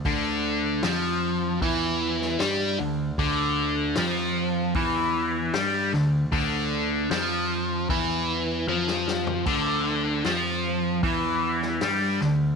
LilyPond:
<<
  \new Staff \with { instrumentName = "Overdriven electric guitar" } { \clef bass \time 4/4 \key d \minor \tempo 4 = 76 d4 f4 e4 g8 d8 | d4 f4 e4 g8 d8 | d4 f4 e4 f4 | d4 f4 e4 g8 d8 | }
  \new Staff \with { instrumentName = "Picked electric bass" } { \clef bass \time 4/4 \key d \minor d,4 f,4 e,4 g,8 d,8 | d,4 f,4 e,4 g,8 d,8 | d,4 f,4 e,4 f,4 | d,4 f,4 e,4 g,8 d,8 | }
  \new DrumStaff \with { instrumentName = "Drums" } \drummode { \time 4/4 <hho bd>4 <hho sn>4 <hho bd>8. sn16 <hho sn>4 | <hho bd>4 <hho sn>4 <hho bd>4 <hho sn>8 sn8 | <hho bd>4 <hho sn>4 <hho bd>4 tommh16 sn16 sn16 tomfh16 | <cymc hho bd>4 <hho sn>4 <hho bd>8. sn16 <hho sn>8 sn8 | }
>>